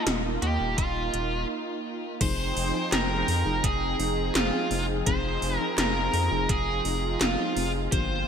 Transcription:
Already playing: analog synth pad A#3 D#4 F4
0.07 analog synth bass D#1, snare, closed hi-hat
0.42 analog synth bass D#2, lead electric guitar G4, closed hi-hat
0.60 analog synth bass D#1
0.78 analog synth bass D#1, lead electric guitar F4, kick, closed hi-hat
1.14 analog synth bass D#1, closed hi-hat
2.21 analog synth bass F1, fm electric piano F3 C4 D#4 G#4, analog synth pad F3 C4 D#4 G#4 G5, lead electric guitar C5, kick, closed hi-hat, crash
2.57 analog synth bass F1, open hi-hat
2.74 fm electric piano F3 C4 D#4 G#4
2.92 analog synth bass F1, lead electric guitar A#4, snare, clap, closed hi-hat
3.28 analog synth bass F2, open hi-hat
3.46 analog synth bass F1, fm electric piano F3 C4 D#4 G#4
3.64 analog synth bass F1, lead electric guitar G#4, kick, closed hi-hat
3.99 analog synth bass F1, fm electric piano F3 C4 D#4 G#4, open hi-hat
4.35 analog synth bass F1, lead electric guitar F4, snare, clap, closed hi-hat
4.53 fm electric piano F3 C4 D#4 G#4
4.71 analog synth bass F1, open hi-hat
5.07 analog synth bass F1, fm electric piano F3 C4 D#4 G#4, analog synth pad F4, lead electric guitar C5, kick, closed hi-hat
5.42 analog synth bass F1, open hi-hat
5.57 fm electric piano F3 C4 D#4 G#4, lead electric guitar A#4
5.78 analog synth bass F1, lead electric guitar A#4, snare, clap, closed hi-hat
6.14 analog synth bass F2, open hi-hat
6.31 analog synth bass F1, fm electric piano F3 C4 D#4 G#4
6.49 analog synth bass F1, lead electric guitar G#4, kick, closed hi-hat
6.85 analog synth bass F1, fm electric piano F3 C4 D#4 G#4, open hi-hat
7.21 analog synth bass F1, lead electric guitar F4, snare, clap, closed hi-hat
7.39 fm electric piano F3 C4 D#4 G#4
7.57 analog synth bass F1, open hi-hat
7.92 analog synth bass G1, fm electric piano F3 A#3 D4 G4, analog synth pad A#3 G5, lead electric guitar C5, kick, closed hi-hat

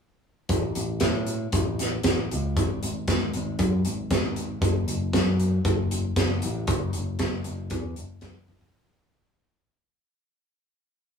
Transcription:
0.49 picked electric bass A1, kick, closed hi-hat
0.75 picked electric bass A1, closed hi-hat
1.00 picked electric bass A2, kick, snare, closed hi-hat
1.26 closed hi-hat
1.52 picked electric bass A1, kick, closed hi-hat
1.79 snare, closed hi-hat
2.03 picked electric bass A1, kick, snare, closed hi-hat
2.31 picked electric bass C#2, closed hi-hat
2.56 picked electric bass G#1, kick, closed hi-hat
2.83 picked electric bass G#1, closed hi-hat
3.08 picked electric bass G#1, kick, snare, closed hi-hat
3.33 picked electric bass G#1, closed hi-hat
3.59 picked electric bass F#2, kick, closed hi-hat
3.85 picked electric bass G#1, closed hi-hat
4.11 picked electric bass G#1, kick, snare, closed hi-hat
4.36 closed hi-hat
4.61 picked electric bass F#1, kick, closed hi-hat
4.87 picked electric bass F#1, closed hi-hat
5.13 picked electric bass F#2, kick, snare, closed hi-hat
5.40 closed hi-hat
5.65 picked electric bass F#1, kick, closed hi-hat
5.91 closed hi-hat
6.16 picked electric bass F#1, kick, snare, closed hi-hat
6.42 picked electric bass A1, closed hi-hat
6.67 picked electric bass F#1, kick, closed hi-hat
6.93 picked electric bass F#1, closed hi-hat
7.19 picked electric bass F#1, kick, snare, closed hi-hat
7.44 picked electric bass F#1, closed hi-hat
7.70 picked electric bass E2, kick, closed hi-hat
7.96 picked electric bass F#1, closed hi-hat
8.21 picked electric bass F#1, kick, snare, closed hi-hat
8.48 kick
8.61 kick

